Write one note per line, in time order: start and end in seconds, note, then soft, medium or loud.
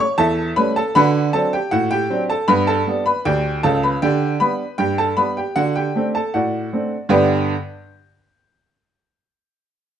0.00 0.18 C#5 medium
0.00 0.18 C#6 loud
0.18 0.51 E2 loud
0.18 0.54 A4 medium
0.18 0.54 E5 medium
0.18 0.49 A5 loud
0.56 0.78 G3 medium
0.56 0.78 A3 medium
0.56 0.78 C#4 medium
0.56 0.75 B4 medium
0.56 0.76 B5 loud
0.76 0.95 A4 medium
0.76 0.95 A5 loud
0.95 1.28 D3 loud
0.95 1.18 F#4 medium
0.95 1.32 B4 loud
0.95 1.32 F#5 loud
0.95 1.26 B5 loud
1.33 1.55 F#3 medium
1.33 1.55 C4 medium
1.33 1.55 D4 medium
1.33 1.52 A4 medium
1.33 1.53 A5 loud
1.53 1.72 G4 medium
1.53 1.72 G5 medium
1.71 2.04 A2 medium
1.71 1.90 F#4 medium
1.71 1.91 F#5 loud
1.91 2.27 G4 medium
1.91 2.22 G5 loud
2.10 2.31 F#3 medium
2.10 2.32 C4 medium
2.10 2.32 D4 medium
2.30 2.48 A4 medium
2.30 2.49 A5 medium
2.48 2.81 G2 loud
2.48 2.71 B3 medium
2.48 2.67 B4 loud
2.48 2.68 B5 loud
2.67 3.04 A4 medium
2.67 3.04 A5 loud
2.87 3.08 G3 medium
2.87 3.09 B3 medium
2.87 3.09 D4 medium
3.06 3.25 B4 medium
3.06 3.25 B5 loud
3.25 3.58 D2 medium
3.25 3.62 G4 medium
3.25 3.62 D5 medium
3.25 3.62 G5 loud
3.63 3.95 C#2 medium
3.63 3.95 C#3 medium
3.63 3.82 A4 medium
3.63 3.83 A5 loud
3.83 4.02 B4 medium
3.83 4.02 B5 medium
4.02 4.35 D3 loud
4.02 4.39 G4 medium
4.02 4.38 D5 medium
4.02 4.39 G5 loud
4.40 4.62 G3 medium
4.40 4.62 B3 medium
4.40 4.62 D4 medium
4.40 4.77 B4 medium
4.40 4.71 B5 loud
4.78 5.11 G2 medium
4.78 4.97 G4 medium
4.78 4.98 G5 loud
4.98 5.17 A4 medium
4.98 5.17 A5 medium
5.17 5.38 G3 medium
5.17 5.39 B3 medium
5.17 5.39 D4 medium
5.17 5.36 B4 medium
5.17 5.36 B5 loud
5.37 5.56 G4 medium
5.37 5.56 G5 medium
5.56 5.89 D3 medium
5.56 5.74 F#4 medium
5.56 5.75 F#5 loud
5.76 6.12 G4 medium
5.76 6.06 G5 medium
5.95 6.17 A3 medium
5.95 6.17 C4 medium
5.95 6.17 D4 medium
6.15 6.33 A4 medium
6.15 6.34 A5 medium
6.34 6.67 A2 medium
6.34 7.08 F#4 medium
6.34 7.08 D5 medium
6.34 6.96 F#5 medium
6.73 6.94 A3 soft
6.73 6.94 C4 soft
6.73 6.95 D4 medium
7.09 7.53 G2 loud
7.09 7.53 D3 loud
7.09 7.53 B3 loud
7.09 7.54 D4 loud
7.09 7.54 G4 loud
7.09 7.54 B4 loud
7.09 7.54 G5 medium